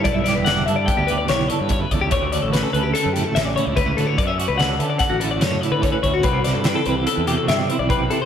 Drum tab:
HH |xxxxxxxxxx|xxxxxxxxxx|xxxxxxxxxx|xxxxxxxxxx|
SD |-oo---o---|--o---o---|--o-o-o---|-oo---o---|
BD |o---o---oo|o-------o-|o---o---oo|o-------o-|